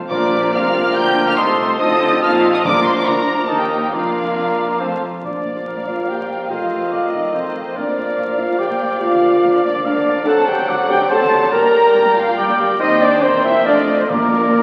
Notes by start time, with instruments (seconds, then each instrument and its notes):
0.09 double bass section A#1, cello section A#2, timpani A#2, bassoon F3, french horn section F3 D4, viola section A#3 F4, clarinet F4, trumpet section A#4, violin section D5 D6, cor anglais D5, flute A#5
0.32 viola section G4
0.52 double bass section C2, cello section C3, french horn section F3 D4, bassoon F3, viola section A3 F4, clarinet F4, trumpet section A#4, cor anglais D5, violin section F5 F6, flute A#5
0.74 viola section A#3
0.95 double bass section D2, cello section D3, viola section A#3 D4, violin section G5 G6
1.27 violin section F5 F6
1.37 double bass section C2, cello section C3, french horn section F3 D#4, bassoon F3, viola section A3 D#4, clarinet F4, trumpet section A4, violin section C5 C6, cor anglais D#5, flute A5
1.58 viola section A3
1.79 double bass section D2, cello section D3, bassoon F3, french horn section F3 D#4, viola section C4 F4, clarinet F4, trumpet section A4, cor anglais D#5, violin section D#5 D#6, flute A5
2.01 viola section G4
2.22 double bass section A#1, cello section A#2, bassoon F3, french horn section F3 D#4, viola section C4 F4, clarinet F4, trumpet section A4, cor anglais D#5, violin section F5 F6, flute A5
2.53 violin section D#5 D#6
2.64 double bass section A#1, timpani A#2, cello section A#2, french horn section F3 D4, bassoon F3, viola section A#3 D4, clarinet F4, trumpet section A#4, violin section D5 D6, cor anglais D5, flute A#5
2.84 violin section C5 C6
2.96 violin section D5 D6
3.06 cello section D2, double bass section D2, french horn section F3 D4, bassoon F3, viola section A#3 D4, clarinet F4, trumpet section A#4, violin section A#4 A#5, cor anglais D5, flute A#5
3.47 cello section D#2, double bass section D#2, french horn section D#3 D#4, viola section A#3 D#4, bassoon A#3, clarinet D#4, violin section A4 A5, trumpet section A#4, cor anglais D#5, flute A#5
3.59 violin section G4 G5
3.69 violin section A#4 A#5
3.81 violin section G4 G5
3.91 double bass section F1, cello section F2, french horn section F3 D4, viola section A#3 D4, bassoon A#3, clarinet F4, violin section F4 F5, trumpet section A#4, cor anglais D5, flute A#5
4.79 double bass section F1, cello section F2, french horn section F3 C4, viola section A3 F4, bassoon C4, clarinet F4, trumpet section A4, cor anglais C5, flute A5
5.23 double bass section A#1, cello section A#2, timpani A#2, bassoon F3, viola section A#3 F4, french horn section D4, clarinet A#4, violin section D5 F5, trumpet section D5, flute D5, cor anglais D5
5.33 cello section A#2, viola section A#3 F4
5.44 double bass section A#1, cello section A#2, viola section A#3 F4
5.55 cello section A#2, viola section A#3 F4
5.65 double bass section A#1, cello section A#2, viola section A#3 F4, cor anglais A#4
5.77 cello section A#2, viola section A#3 F4
5.86 double bass section A#1, cello section A#2, viola section A#3 F4, french horn section F4, violin section F5, trumpet section F5, flute F5
5.98 cello section A#2, viola section A#3 F4
6.07 double bass section A#1, cello section A#2, viola section A#3 F4, french horn section G4, violin section G5, trumpet section G5, flute G5
6.19 cello section A#2, viola section A#3 F4
6.29 double bass section A#1, cello section A#2, viola section A#3 F4
6.40 cello section A#2, viola section A#3 F4
6.50 double bass section F1, cello section F2, bassoon D#3, viola section A3 F4, french horn section F4, clarinet A4, cor anglais C5, violin section D#5 F5, trumpet section F5, flute F5
6.60 cello section F2, viola section A3 F4
6.71 double bass section F1, cello section F2, viola section A3 F4
6.81 cello section F2, viola section A3 F4
6.91 double bass section F1, cello section F2, viola section A3 F4, cor anglais D5
7.02 cello section F2, viola section A3 F4
7.13 double bass section F1, cello section F2, viola section A3 F4, french horn section D#4, violin section D#5, flute D#5, trumpet section D#5
7.23 cello section F2, viola section A3 F4
7.33 double bass section F1, cello section F2, viola section A3 F4, french horn section C4, violin section C5, cor anglais C5, flute C5, trumpet section C5
7.44 cello section F2, viola section A3 F4
7.54 double bass section F1, cello section F2, viola section A3 F4
7.65 cello section F2, viola section A3 F4
7.76 double bass section A#1, cello section A#2, bassoon F3, viola section A#3 F4, french horn section D4, cor anglais A#4, clarinet A#4, violin section D5 F5, trumpet section D5, flute D5
7.86 cello section A#2, viola section A#3 F4
7.96 double bass section A#1, cello section A#2, viola section A#3 F4
8.06 cello section A#2, viola section A#3 F4
8.17 double bass section A#1, cello section A#2, viola section A#3 F4
8.27 cello section A#2, viola section A#3 F4
8.37 double bass section A#1, cello section A#2, viola section A#3 F4, french horn section F4, violin section F5, trumpet section F5, flute F5
8.49 cello section A#2, viola section A#3 F4
8.58 double bass section A#1, cello section A#2, viola section A#3 F4, french horn section G4, cor anglais D5, violin section G5, trumpet section G5, flute G5
8.69 cello section A#2, viola section A#3 F4
8.79 double bass section A#1, cello section A#2, viola section A#3 F4
8.90 cello section A#2, viola section A#3 F4
9.01 double bass section D2, cello section D3, viola section A#3 A#4, french horn section F4, trumpet section F5, flute F5, violin section F5
9.11 cello section D3, viola section A#3 A#4
9.21 double bass section D2, cello section D3, viola section A#3 A#4
9.32 cello section D3, viola section A#3 A#4
9.42 double bass section D2, cello section D3, viola section A#3 A#4
9.53 cello section D3, viola section A#3 A#4
9.63 double bass section D2, cello section D3, viola section A#3 A#4, french horn section D4, violin section D5, trumpet section D5, flute D5
9.73 cello section D3, viola section A#3 A#4
9.84 double bass section D2, cello section D3, viola section A#3 A#4, french horn section D4, violin section D5, trumpet section D5, flute D5, cor anglais F5
9.94 cello section D3, viola section A#3 A#4
10.05 double bass section D2, cello section D3, viola section A#3 A#4
10.16 cello section D3, viola section A#3 A#4
10.25 double bass section D2, cello section D3, bassoon F#3, viola section C4 A4, french horn section A4, clarinet C5, violin section D5 F#5 A5, cor anglais F#5, flute A5, trumpet section A5
10.36 cello section D3, viola section C4 A4
10.46 double bass section D2, cello section D3, viola section C4 A4, french horn section G4, violin section G5, trumpet section G5, flute G5
10.57 cello section D3, viola section C4 A4
10.67 double bass section D2, cello section D3, viola section C4 A4, french horn section F#4, cor anglais D5, violin section F#5, flute F#5, trumpet section F#5
10.78 cello section D3, viola section C4 A4
10.89 double bass section D2, cello section D3, viola section C4 A4, french horn section G4, violin section G5, trumpet section G5, flute G5
11.00 cello section D3, viola section C4 A4
11.09 double bass section D2, cello section D3, bassoon F#3, viola section C4 A4, french horn section A4, cor anglais C5, clarinet C5, violin section A5, trumpet section A5, flute A5
11.20 cello section D3, viola section C4 A4
11.31 double bass section D2, cello section D3, viola section C4 A4
11.42 cello section D3, viola section C4 A4
11.52 double bass section G1, cello section G2, bassoon G3, viola section A#3 G4, cor anglais A#4, french horn section A#4, clarinet A#4, violin section G5 A#5, trumpet section A#5, flute A#5
11.63 cello section G2, viola section A#3 G4
11.73 double bass section G1, cello section G2, viola section A#3 G4
11.84 cello section G2, viola section A#3 G4
11.94 double bass section G1, cello section G2, viola section A#3 G4
12.05 cello section G2, viola section A#3 G4
12.16 double bass section G1, cello section G2, viola section A#3 G4, french horn section F4, violin section F5, trumpet section F5, flute F5
12.26 cello section G2, viola section A#3 G4
12.37 double bass section G1, cello section G2, bassoon G3, viola section A#3 G4, french horn section G4, clarinet A#4, cor anglais D5, violin section G5, trumpet section G5, flute G5
12.48 cello section G2, viola section A#3 G4
12.58 double bass section G1, cello section G2, viola section A#3 G4
12.69 cello section G2, viola section A#3 G4
12.79 double bass section D#2, cello section D#2, bassoon G3, viola section C4 G4, french horn section D#4, cor anglais C5, violin section C5 D#5 G5, clarinet C5, flute D#5, trumpet section D#5
13.01 french horn section D4, trumpet section D5, flute D5, violin section D5
13.22 double bass section E1, cello section E2, viola section A#3 G4, bassoon A#3, french horn section C4, flute C5, trumpet section C5, violin section C5 G5, clarinet C5, cor anglais G5
13.44 french horn section E4, flute E5, trumpet section E5, violin section E5
13.66 double bass section F1, cello section F2, viola section A3 F4, bassoon A3, french horn section D4, violin section C5 D5 D#5, trumpet section D5, flute D5, clarinet D#5, cor anglais F5
13.98 french horn section C4, flute C5, trumpet section C5, violin section C5
14.09 double bass section A#1, timpani A#2, cello section A#2, french horn section A#3, viola section A#3 F4, bassoon A#3, trumpet section A#4, violin section A#4 D5, flute A#4, cor anglais D5, clarinet D5